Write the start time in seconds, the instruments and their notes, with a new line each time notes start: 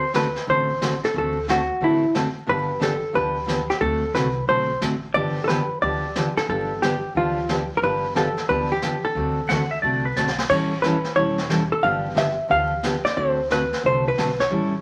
Already playing: upright bass D2, hollow-body jazz guitar C5
0.14 steel-string acoustic guitar D3 A3 C4 F#4 A4, hollow-body jazz guitar B4, snare, hi-hat pedal
0.36 snare
0.47 upright bass A1, steel-string acoustic guitar D3 A3 C4 F#4 A4, hollow-body jazz guitar C5, brush sweep
0.81 steel-string acoustic guitar D3 A3 C4 F#4 A4, snare, hi-hat pedal
1.04 hollow-body jazz guitar A4, snare
1.14 upright bass D2, steel-string acoustic guitar D3 A3 C4 F#4 A4, hollow-body jazz guitar A4, brush sweep
1.48 steel-string acoustic guitar D3 A3 C4 F#4 A4, hollow-body jazz guitar F#4, snare, hi-hat pedal
1.80 upright bass A1, steel-string acoustic guitar D3 A3 C4 F#4 A4, hollow-body jazz guitar E4, brush sweep
2.15 steel-string acoustic guitar D3 A3 C4 F#4 A4, snare, hi-hat pedal
2.47 upright bass G1, steel-string acoustic guitar D3 F3 B3 D4 G4, hollow-body jazz guitar B4, brush sweep
2.80 steel-string acoustic guitar D3 F3 B3 D4 G4, hollow-body jazz guitar A4, snare, hi-hat pedal
3.13 upright bass D2, steel-string acoustic guitar D3 F3 B3 D4 G4, hollow-body jazz guitar B4, brush sweep
3.46 steel-string acoustic guitar D3 F3 B3 D4 G4, snare, hi-hat pedal
3.70 hollow-body jazz guitar G4, snare
3.80 upright bass D2, steel-string acoustic guitar D3 A3 C4 F#4 A4, hollow-body jazz guitar A4, brush sweep
4.14 upright bass C2, steel-string acoustic guitar D3 A3 C4 F#4 A4, hollow-body jazz guitar B4, snare, hi-hat pedal
4.47 upright bass B1, steel-string acoustic guitar D3 A3 C4 F#4 A4, hollow-body jazz guitar C5, brush sweep
4.81 upright bass A1, steel-string acoustic guitar D3 A3 C4 F#4 A4, snare, hi-hat pedal
5.14 upright bass G1, steel-string acoustic guitar D3 F3 B3 D4 G4, hollow-body jazz guitar D5, brush sweep
5.44 hollow-body jazz guitar A4 B4
5.48 steel-string acoustic guitar D3 F3 B3 D4 G4, snare, hi-hat pedal
5.82 upright bass D2, steel-string acoustic guitar D3 F3 B3 D4 G4, hollow-body jazz guitar D5, brush sweep
6.16 steel-string acoustic guitar D3 F3 B3 D4 G4, snare, hi-hat pedal
6.37 hollow-body jazz guitar A4, snare
6.49 upright bass G1, steel-string acoustic guitar D3 F3 B3 D4 G4, hollow-body jazz guitar A4, brush sweep
6.82 steel-string acoustic guitar D3 F3 B3 D4 G4, hollow-body jazz guitar G4, snare, hi-hat pedal
7.15 upright bass D2, steel-string acoustic guitar D3 F3 B3 D4 G4, hollow-body jazz guitar F4, brush sweep
7.49 steel-string acoustic guitar D3 F3 B3 D4 G4, snare, hi-hat pedal
7.77 hollow-body jazz guitar A#4
7.82 upright bass G1, steel-string acoustic guitar D3 F3 B3 D4 G4, hollow-body jazz guitar B4, brush sweep
8.15 steel-string acoustic guitar D3 F3 B3 D4 G4, hollow-body jazz guitar A4, snare, hi-hat pedal
8.37 snare
8.48 upright bass D2, steel-string acoustic guitar D3 F3 B3 D4 G4, hollow-body jazz guitar B4, brush sweep
8.72 hollow-body jazz guitar G4
8.82 steel-string acoustic guitar D3 F3 B3 D4 G4, snare, hi-hat pedal
9.05 hollow-body jazz guitar A4
9.15 upright bass D2, steel-string acoustic guitar D3 A3 C4 F#4 A4, brush sweep
9.48 upright bass D2, steel-string acoustic guitar D3 A3 C4 F#4 A4, electric slide guitar F#5, snare, hi-hat pedal
9.71 electric slide guitar E5
9.82 upright bass C2, steel-string acoustic guitar D3 A3 C4 F#4 A4, electric slide guitar D5, brush sweep
10.05 electric slide guitar B4
10.16 upright bass B1, steel-string acoustic guitar D3 A3 C4 F#4 A4, electric slide guitar D5, snare, hi-hat pedal
10.27 snare
10.38 snare
10.49 upright bass A1, steel-string acoustic guitar E3 G3 C#4 E4 A4, hollow-body jazz guitar C#5, brush sweep, kick, crash
10.82 steel-string acoustic guitar E3 G3 C#4 E4 A4, hollow-body jazz guitar B4, snare, hi-hat pedal
11.04 snare
11.16 upright bass E1, steel-string acoustic guitar E3 G3 C#4 E4 A4, hollow-body jazz guitar C#5, brush sweep
11.38 snare
11.49 steel-string acoustic guitar E3 G3 C#4 E4 A4, snare, hi-hat pedal
11.72 hollow-body jazz guitar A4
11.83 upright bass G1, steel-string acoustic guitar D3 F3 B3 D4 G4, hollow-body jazz guitar F5, brush sweep
12.15 steel-string acoustic guitar D3 F3 B3 D4 G4, hollow-body jazz guitar E5, snare, hi-hat pedal
12.49 upright bass D2, steel-string acoustic guitar D3 F3 B3 D4 G4, hollow-body jazz guitar F5, brush sweep
12.83 steel-string acoustic guitar D3 F3 B3 D4 G4, snare, hi-hat pedal
13.05 hollow-body jazz guitar D5, snare
13.16 upright bass D2, steel-string acoustic guitar D3 A3 C4 F#4 A4, hollow-body jazz guitar C5, brush sweep
13.50 steel-string acoustic guitar D3 A3 C4 F#4 A4, hollow-body jazz guitar B4, snare, hi-hat pedal
13.73 snare
13.83 upright bass C2, steel-string acoustic guitar D3 A3 C4 F#4 A4, hollow-body jazz guitar C5, brush sweep
14.08 hollow-body jazz guitar B4
14.17 upright bass B1, steel-string acoustic guitar D3 A3 C4 F#4 A4, snare, hi-hat pedal
14.39 hollow-body jazz guitar C#5, snare
14.51 upright bass A1, steel-string acoustic guitar E3 G3 C#4 E4 A4, brush sweep